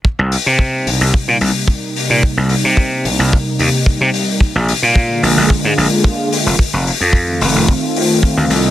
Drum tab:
HH |--o---oo--o---o-|--o---o---o---o-|--o---oo--o---o-|--o---o---o---o-|
BD |o---o---o---o---|o---o---o---o---|o---o---o---o---|o---o---o---o---|